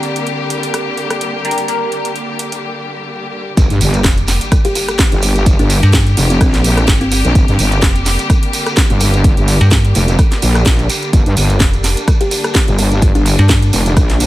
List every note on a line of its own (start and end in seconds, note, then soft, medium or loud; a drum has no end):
0.00 3.53 D3 medium
0.00 3.53 G3 medium
0.00 3.53 A#3 medium
0.00 2.63 G4 medium
0.00 3.53 G4 medium
0.00 2.63 D5 medium
0.00 2.63 A#5 medium
0.00 closed hi-hat soft
0.16 closed hi-hat soft
0.27 closed hi-hat soft
0.50 closed hi-hat medium
0.63 closed hi-hat soft
0.74 cross-stick medium
0.74 closed hi-hat medium
0.97 closed hi-hat soft
1.10 cross-stick medium
1.10 closed hi-hat soft
1.21 closed hi-hat medium
1.45 1.66 A#3 medium
1.45 1.66 D4 medium
1.45 1.66 G4 medium
1.45 1.66 A#4 loud
1.45 closed hi-hat soft
1.51 closed hi-hat medium
1.58 closed hi-hat soft
1.68 2.60 A#3 medium
1.68 2.60 D4 medium
1.68 2.60 G4 medium
1.68 2.60 A#4 medium
1.68 closed hi-hat medium
1.92 closed hi-hat soft
2.05 closed hi-hat soft
2.16 closed hi-hat soft
2.39 closed hi-hat medium
2.52 closed hi-hat soft
3.57 3.68 G1 loud
3.57 14.26 D3 medium
3.57 14.26 G3 medium
3.57 14.26 A#3 medium
3.57 11.12 G4 loud
3.57 kick loud
3.57 closed hi-hat medium
3.57 impact medium
3.57 shekere medium
3.70 3.79 G2 loud
3.70 closed hi-hat soft
3.70 shekere soft
3.81 4.03 G1 medium
3.81 open hi-hat loud
3.81 shekere medium
3.94 closed hi-hat soft
3.94 shekere soft
4.04 4.39 F1 loud
4.04 kick loud
4.04 snare loud
4.04 closed hi-hat medium
4.04 shekere medium
4.18 closed hi-hat soft
4.18 shekere soft
4.28 snare soft
4.28 open hi-hat loud
4.28 shekere medium
4.41 closed hi-hat medium
4.41 shekere soft
4.52 kick loud
4.52 cross-stick medium
4.52 closed hi-hat medium
4.52 shekere medium
4.65 4.72 G4 medium
4.65 closed hi-hat medium
4.65 shekere soft
4.75 4.84 G4 medium
4.75 open hi-hat loud
4.75 shekere medium
4.88 cross-stick medium
4.88 closed hi-hat soft
4.88 shekere soft
4.99 kick loud
4.99 snare loud
4.99 closed hi-hat medium
4.99 shekere soft
5.11 5.57 G1 loud
5.11 closed hi-hat soft
5.11 shekere soft
5.22 open hi-hat loud
5.22 shekere loud
5.36 closed hi-hat soft
5.36 shekere soft
5.46 kick loud
5.46 closed hi-hat medium
5.46 shekere medium
5.59 5.81 G1 loud
5.59 5.70 D4 medium
5.59 closed hi-hat soft
5.59 shekere soft
5.70 open hi-hat loud
5.70 shekere medium
5.83 6.15 G2 medium
5.83 closed hi-hat soft
5.83 shekere soft
5.93 kick loud
5.93 snare loud
5.93 closed hi-hat medium
5.93 shekere medium
6.07 closed hi-hat soft
6.07 shekere soft
6.17 6.39 F1 loud
6.17 open hi-hat loud
6.17 shekere medium
6.30 6.37 C4 medium
6.30 closed hi-hat medium
6.30 shekere soft
6.41 6.86 A#1 medium
6.41 6.49 C4 medium
6.41 kick loud
6.41 cross-stick medium
6.41 closed hi-hat medium
6.41 shekere soft
6.54 snare soft
6.54 closed hi-hat medium
6.54 shekere soft
6.64 open hi-hat loud
6.64 shekere medium
6.77 cross-stick medium
6.77 closed hi-hat soft
6.77 shekere soft
6.88 7.23 G1 loud
6.88 kick loud
6.88 snare loud
6.88 closed hi-hat medium
6.88 shekere medium
7.01 7.08 C4 medium
7.01 closed hi-hat soft
7.01 shekere soft
7.11 7.20 C4 medium
7.11 open hi-hat loud
7.11 shekere medium
7.25 7.34 A#1 medium
7.25 closed hi-hat soft
7.25 shekere soft
7.35 7.46 G1 loud
7.35 kick loud
7.35 closed hi-hat medium
7.35 shekere medium
7.48 7.57 G2 loud
7.48 closed hi-hat soft
7.48 shekere soft
7.59 7.81 G1 medium
7.59 open hi-hat loud
7.59 shekere loud
7.72 closed hi-hat soft
7.72 shekere soft
7.82 8.17 F1 loud
7.82 kick loud
7.82 snare loud
7.82 closed hi-hat medium
7.82 shekere medium
7.96 closed hi-hat soft
7.96 shekere soft
8.06 snare soft
8.06 open hi-hat loud
8.06 shekere medium
8.19 closed hi-hat medium
8.19 shekere soft
8.30 kick loud
8.30 cross-stick medium
8.30 closed hi-hat medium
8.30 shekere soft
8.42 closed hi-hat medium
8.42 shekere soft
8.53 open hi-hat loud
8.53 shekere medium
8.66 cross-stick medium
8.66 closed hi-hat soft
8.66 shekere soft
8.77 kick loud
8.77 snare loud
8.77 closed hi-hat medium
8.77 shekere medium
8.90 9.35 G1 loud
8.90 closed hi-hat soft
8.90 shekere soft
9.00 open hi-hat loud
9.00 shekere loud
9.14 closed hi-hat soft
9.14 shekere soft
9.24 kick loud
9.24 closed hi-hat medium
9.24 shekere soft
9.37 9.59 G1 loud
9.37 closed hi-hat soft
9.37 shekere soft
9.48 open hi-hat loud
9.48 shekere medium
9.61 9.93 G2 loud
9.61 closed hi-hat soft
9.61 shekere soft
9.71 kick loud
9.71 snare loud
9.71 closed hi-hat medium
9.71 shekere soft
9.85 closed hi-hat soft
9.85 shekere soft
9.95 10.17 F1 medium
9.95 open hi-hat loud
9.95 shekere medium
10.08 closed hi-hat soft
10.08 shekere soft
10.19 kick loud
10.19 cross-stick medium
10.19 closed hi-hat medium
10.19 shekere medium
10.32 snare soft
10.32 closed hi-hat medium
10.32 shekere soft
10.42 10.88 A#1 loud
10.42 open hi-hat loud
10.42 shekere medium
10.55 cross-stick medium
10.55 closed hi-hat soft
10.55 shekere soft
10.66 kick loud
10.66 snare loud
10.66 closed hi-hat medium
10.66 shekere medium
10.79 closed hi-hat soft
10.79 shekere soft
10.90 open hi-hat loud
10.90 shekere loud
11.03 closed hi-hat soft
11.03 shekere soft
11.13 11.24 G1 loud
11.13 14.26 D4 loud
11.13 kick loud
11.13 closed hi-hat medium
11.13 shekere soft
11.26 11.35 G2 loud
11.26 closed hi-hat soft
11.26 shekere soft
11.37 11.59 G1 medium
11.37 open hi-hat loud
11.37 shekere medium
11.50 closed hi-hat soft
11.50 shekere soft
11.60 11.95 F1 loud
11.60 kick loud
11.60 snare loud
11.60 closed hi-hat medium
11.73 closed hi-hat soft
11.73 shekere soft
11.84 snare soft
11.84 open hi-hat loud
11.84 shekere medium
11.97 closed hi-hat soft
11.97 shekere soft
12.08 kick loud
12.08 cross-stick medium
12.08 closed hi-hat medium
12.08 shekere medium
12.20 12.28 G4 medium
12.20 closed hi-hat medium
12.20 shekere soft
12.31 12.40 G4 medium
12.31 open hi-hat loud
12.31 shekere loud
12.44 cross-stick medium
12.44 closed hi-hat soft
12.44 shekere soft
12.54 kick loud
12.54 snare loud
12.54 closed hi-hat medium
12.54 shekere medium
12.68 13.13 G1 loud
12.68 closed hi-hat soft
12.68 shekere soft
12.78 open hi-hat loud
12.78 shekere medium
12.92 closed hi-hat soft
12.92 shekere soft
13.01 kick loud
13.01 closed hi-hat medium
13.01 shekere soft
13.15 13.37 G1 loud
13.15 13.26 D4 medium
13.15 closed hi-hat soft
13.15 shekere soft
13.26 open hi-hat loud
13.26 shekere medium
13.38 13.71 G2 medium
13.38 13.73 D4 loud
13.38 closed hi-hat soft
13.38 shekere soft
13.49 kick loud
13.49 snare loud
13.49 closed hi-hat medium
13.49 shekere medium
13.62 closed hi-hat soft
13.62 shekere soft
13.73 13.95 F1 medium
13.73 open hi-hat loud
13.73 shekere loud
13.85 closed hi-hat medium
13.85 shekere soft
13.96 14.26 A#1 loud
13.96 kick loud
13.96 cross-stick medium
13.96 closed hi-hat medium
13.96 shekere soft
14.09 snare soft
14.09 closed hi-hat medium
14.09 shekere soft
14.20 open hi-hat loud
14.20 shekere medium